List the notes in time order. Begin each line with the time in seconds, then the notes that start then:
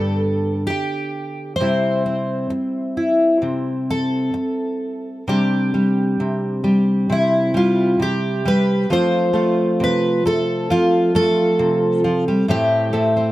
Already playing: G2 D3 B3 D4 A4
0.67 G4, muted twelve-string acoustic guitar stroke
1.56 C5
1.60 C3 G3 C4 E4
2.06 C4
2.50 muted twelve-string acoustic guitar stroke
2.97 E4
3.42 C3
3.91 A4
4.34 muted twelve-string acoustic guitar stroke
5.28 C3 G3 D4 G4
5.74 G3
6.20 C3
6.64 G3
7.10 C3 E4
7.54 G3 F4
7.99 C3 G4
8.45 G3 B4
8.90 F3 A3 C4 F4 C5
9.33 A3 F4
9.80 C3 B4
10.25 A3 A4
10.70 F3 F4
11.15 A3 A4
11.59 C3
12.04 F3
12.28 G3
12.48 A2 A3 C4 G4
12.93 A3 C4
13.17 C4